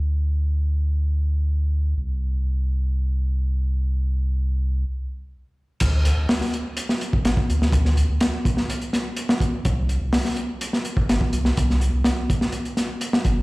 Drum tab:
CC |----------------|----------------|----------------|x---------------|
HH |----------------|----------------|----------------|x-x-o-x-x-x-x-x-|
SD |----------------|----------------|----------------|----oo---o--o--o|
BD |----------------|----------------|----------------|o----------o-o--|

CC |----------------|----------------|----------------|
HH |x-x-x-x-xxx-x-x-|x-x-o-x-x-x-x-x-|x-x-x-x-xxx-x-x-|
SD |-o--o--o--o--o--|----oo---o--o--o|-o--o--o--o--o--|
BD |o-----o-------o-|o----------o-o--|o-----o-------o-|